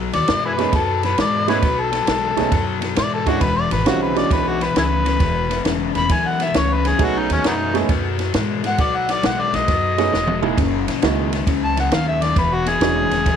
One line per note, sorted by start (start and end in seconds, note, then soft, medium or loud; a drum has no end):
0.00 0.11 B2 medium
0.00 0.11 F#3 loud
0.13 0.27 D#2 medium
0.13 0.26 B2 medium
0.13 0.27 F#3 medium
0.13 0.43 D5 loud
0.13 snare soft
0.13 ride medium
0.28 0.68 F#2 medium
0.28 0.55 B2 medium
0.28 0.56 G#3 medium
0.28 snare loud
0.28 ride medium
0.45 0.52 E4 medium
0.45 0.54 G#4 medium
0.45 0.77 B4 medium
0.58 0.72 B2 medium
0.58 0.72 G#3 medium
0.58 0.71 A3 medium
0.58 0.71 B3 medium
0.58 0.71 C#4 medium
0.58 0.72 D#4 medium
0.58 0.72 G#4 medium
0.58 snare soft
0.58 ride medium
0.73 1.12 F#2 loud
0.73 1.00 B2 medium
0.73 1.01 F#3 loud
0.73 1.03 A4 medium
0.73 kick loud
0.73 snare soft
0.73 ride medium
1.03 1.17 B2 medium
1.03 1.17 F#3 medium
1.03 1.18 B4 medium
1.03 snare soft
1.03 ride medium
1.18 1.57 G#2 medium
1.18 1.45 B2 medium
1.18 1.45 G#3 medium
1.18 1.48 D5 medium
1.18 snare loud
1.18 ride medium
1.48 1.61 B2 medium
1.48 1.61 G#3 medium
1.48 1.61 A3 medium
1.48 1.61 B3 medium
1.48 1.61 C#4 medium
1.48 1.61 D#4 medium
1.48 1.57 E4 medium
1.48 1.57 G#4 medium
1.48 1.62 B4 medium
1.48 1.81 B4 medium
1.48 snare soft
1.48 ride medium
1.62 2.02 B1 medium
1.62 1.89 B2 medium
1.62 1.89 F#3 loud
1.62 kick loud
1.62 snare soft
1.62 ride medium
1.80 2.65 A4 loud
1.92 2.05 B2 medium
1.92 2.06 F#3 medium
1.92 snare soft
1.92 ride medium
2.07 2.34 B1 medium
2.07 2.34 B2 medium
2.07 2.34 G#3 medium
2.07 snare medium
2.07 ride medium
2.37 2.50 B1 medium
2.37 2.50 B2 medium
2.37 2.51 G#3 medium
2.37 2.50 A3 medium
2.37 2.50 B3 medium
2.37 2.50 C#4 medium
2.37 2.51 D#4 medium
2.37 2.51 G#4 medium
2.37 snare soft
2.37 ride medium
2.51 2.91 F#2 medium
2.51 2.79 B2 medium
2.51 2.79 F#3 medium
2.51 kick loud
2.51 snare soft
2.51 ride medium
2.81 2.94 B2 medium
2.81 2.95 F#3 medium
2.81 snare soft
2.81 ride medium
2.96 3.36 G#2 medium
2.96 3.23 B2 medium
2.96 3.23 G#3 medium
2.96 3.12 D5 medium
2.96 snare loud
2.96 ride medium
3.14 3.30 A4 medium
3.26 3.39 B2 medium
3.26 3.40 G#3 medium
3.26 3.40 C#4 medium
3.26 3.40 D4 medium
3.26 3.40 E4 medium
3.26 3.40 F#4 medium
3.26 3.44 F#4 medium
3.26 kick medium
3.26 snare soft
3.26 ride medium
3.41 3.68 E1 medium
3.41 3.68 E2 medium
3.41 3.68 B2 loud
3.41 3.56 B4 medium
3.41 kick loud
3.41 snare soft
3.41 ride medium
3.57 3.71 D5 loud
3.70 3.85 G#1 medium
3.70 3.83 E2 medium
3.70 3.84 B2 medium
3.70 3.86 B4 medium
3.70 snare soft
3.70 ride medium
3.85 4.26 B1 medium
3.85 4.12 E2 medium
3.85 4.13 C#3 medium
3.85 4.13 G3 medium
3.85 4.13 C4 medium
3.85 4.13 C#4 medium
3.85 4.13 D#4 medium
3.85 4.14 F4 medium
3.85 4.01 F#4 loud
3.85 snare loud
3.85 ride medium
4.02 4.19 B4 medium
4.15 4.29 E2 medium
4.15 4.29 C#3 medium
4.15 4.55 G#3 medium
4.15 4.55 C#4 medium
4.15 4.55 D4 medium
4.15 4.55 E4 medium
4.15 4.55 F#4 medium
4.15 4.31 D5 medium
4.15 snare soft
4.15 ride medium
4.30 4.70 B1 medium
4.30 4.58 E2 medium
4.30 4.58 B2 medium
4.30 4.49 B4 medium
4.30 kick loud
4.30 snare soft
4.30 ride medium
4.48 4.65 F#4 medium
4.60 4.73 E2 medium
4.60 4.74 B2 medium
4.60 4.76 B4 medium
4.60 snare soft
4.60 ride medium
4.74 5.15 C#2 medium
4.74 5.02 E2 medium
4.74 5.02 C#3 medium
4.74 4.85 E4 medium
4.74 4.85 G#4 medium
4.74 5.63 B4 medium
4.74 snare loud
4.74 ride medium
5.04 5.18 E2 medium
5.04 5.18 C#3 medium
5.04 snare soft
5.04 ride medium
5.19 5.60 E1 loud
5.19 5.47 E2 medium
5.19 5.47 B2 medium
5.19 kick loud
5.19 snare soft
5.19 ride medium
5.49 5.63 E2 medium
5.49 5.63 B2 medium
5.49 snare soft
5.49 ride medium
5.65 5.92 E1 medium
5.65 5.92 E2 medium
5.65 5.92 C#3 medium
5.65 snare medium
5.65 ride medium
5.94 6.08 E1 medium
5.94 6.08 E2 medium
5.94 6.09 C#3 medium
5.94 6.15 B5 loud
5.94 snare soft
5.94 ride medium
6.09 6.49 B1 loud
6.09 6.37 E2 medium
6.09 6.37 B2 medium
6.09 6.29 G#5 medium
6.09 kick loud
6.09 snare soft
6.09 ride medium
6.27 6.44 F#5 medium
6.39 6.53 E2 medium
6.39 6.53 B2 medium
6.39 6.59 E5 medium
6.39 snare soft
6.39 ride medium
6.54 6.94 C#2 loud
6.54 6.82 E2 medium
6.54 6.82 C#3 medium
6.54 6.75 C#5 medium
6.54 snare loud
6.54 ride medium
6.73 6.89 B4 medium
6.85 6.98 E2 medium
6.85 6.98 C#3 medium
6.85 7.05 G#4 loud
6.85 snare soft
6.85 ride medium
6.98 7.26 B1 loud
6.98 7.27 B2 medium
6.98 7.27 F#3 loud
6.98 7.68 A3 medium
6.98 7.68 B3 medium
6.98 7.68 C#4 medium
6.98 7.68 D#4 medium
6.98 7.69 G#4 medium
6.98 kick loud
6.98 snare soft
6.98 ride medium
7.03 7.20 F#4 loud
7.18 7.31 D#4 medium
7.29 7.43 D#2 medium
7.29 7.43 B2 medium
7.29 7.43 F#3 medium
7.29 7.46 C#4 loud
7.29 snare soft
7.29 ride medium
7.44 7.84 F#2 loud
7.44 7.71 B2 medium
7.44 7.54 F#3 medium
7.44 7.72 G#3 medium
7.44 7.55 B3 medium
7.44 7.75 D#4 loud
7.44 snare loud
7.44 ride medium
7.74 7.88 B2 medium
7.74 7.88 G#3 medium
7.74 7.87 A3 medium
7.74 7.88 B3 medium
7.74 7.88 C#4 medium
7.74 7.88 D#4 medium
7.74 7.88 G#4 medium
7.74 snare soft
7.74 ride medium
7.89 8.29 F#2 medium
7.89 8.16 B2 loud
7.89 8.16 F#3 loud
7.89 kick loud
7.89 snare soft
7.89 ride medium
8.19 8.32 B2 medium
8.19 8.33 F#3 medium
8.19 snare soft
8.19 ride medium
8.34 8.74 G#2 medium
8.34 8.61 B2 medium
8.34 8.61 G#3 medium
8.34 snare loud
8.34 ride medium
8.64 8.77 B2 medium
8.64 8.78 G#3 medium
8.64 8.83 F#5 loud
8.64 snare soft
8.64 ride medium
8.78 9.18 B1 loud
8.78 9.06 B2 medium
8.78 9.06 F#3 loud
8.78 8.97 D5 loud
8.78 kick loud
8.78 snare soft
8.78 ride medium
8.96 9.13 F#5 loud
9.08 9.22 B2 medium
9.08 9.22 F#3 medium
9.08 9.28 D5 medium
9.08 snare soft
9.08 ride medium
9.23 9.50 B1 medium
9.23 9.51 B2 medium
9.23 9.51 G#3 medium
9.23 9.43 F#5 loud
9.23 snare loud
9.23 ride medium
9.42 9.56 D5 medium
9.53 9.66 B1 medium
9.53 9.67 B2 medium
9.53 9.67 G#3 medium
9.53 10.41 D#5 loud
9.53 snare soft
9.53 ride medium
9.68 10.08 F#2 medium
9.68 9.95 B2 medium
9.68 9.95 F#3 medium
9.68 kick loud
9.68 snare soft
9.68 ride medium
9.98 10.11 B2 medium
9.98 10.12 F#3 medium
9.98 10.11 A3 medium
9.98 10.11 B3 medium
9.98 10.12 C#4 medium
9.98 10.12 D#4 medium
9.98 10.12 G#4 medium
9.98 snare soft
9.98 ride medium
10.12 10.53 E1 medium
10.12 10.40 B2 medium
10.12 10.40 G#3 medium
10.12 snare medium
10.27 mid tom medium
10.42 10.56 B2 medium
10.42 10.56 G#3 medium
10.42 10.56 A#3 medium
10.42 10.56 D#4 medium
10.42 10.56 E4 medium
10.42 10.56 G#4 medium
10.42 floor tom loud
10.57 10.84 F#1 medium
10.57 10.85 F#2 medium
10.57 10.85 C#3 medium
10.57 kick loud
10.57 snare soft
10.57 ride medium
10.87 11.01 A#1 medium
10.87 11.01 F#2 medium
10.87 11.01 C#3 medium
10.87 snare soft
10.87 ride medium
11.02 11.42 C#2 loud
11.02 11.29 F#2 medium
11.02 11.30 D#3 medium
11.02 11.30 G#3 medium
11.02 11.30 A#3 medium
11.02 11.30 D#4 medium
11.02 11.30 E4 medium
11.02 11.30 F#4 medium
11.02 snare loud
11.02 ride medium
11.32 11.45 F#2 medium
11.32 11.46 D#3 medium
11.32 snare soft
11.32 ride medium
11.46 11.87 C#2 loud
11.46 11.74 F#2 medium
11.46 11.74 C#3 medium
11.46 kick loud
11.46 snare soft
11.46 ride medium
11.65 11.78 A5 loud
11.76 11.90 F#2 medium
11.76 11.90 C#3 medium
11.76 11.96 F#5 medium
11.76 snare soft
11.76 ride medium
11.91 12.31 D#2 loud
11.91 12.19 F#2 medium
11.91 12.19 D#3 medium
11.91 12.08 F5 medium
11.91 snare loud
11.91 ride medium
12.08 12.24 E5 medium
12.22 12.35 F#2 medium
12.22 12.35 D#3 medium
12.22 12.37 D5 medium
12.22 snare soft
12.22 ride medium
12.36 12.76 E1 medium
12.36 12.64 E2 medium
12.36 12.64 B2 loud
12.36 12.55 B4 medium
12.36 kick loud
12.36 snare soft
12.36 ride medium
12.54 12.70 F#4 loud
12.66 12.80 E2 medium
12.66 12.80 B2 medium
12.66 13.36 G#4 loud
12.66 snare soft
12.66 ride medium
12.81 13.08 E1 loud
12.81 13.09 E2 medium
12.81 13.09 C#3 loud
12.81 13.08 G#3 medium
12.81 13.09 C#4 medium
12.81 13.09 D4 medium
12.81 13.09 E4 medium
12.81 13.09 F#4 medium
12.81 snare loud
12.81 ride medium
13.11 13.24 E1 medium
13.11 13.25 E2 medium
13.11 13.25 C#3 medium
13.11 snare soft
13.11 ride medium
13.26 13.36 B1 loud
13.26 13.36 E2 medium
13.26 13.36 B2 loud
13.26 kick loud
13.26 snare soft
13.26 ride medium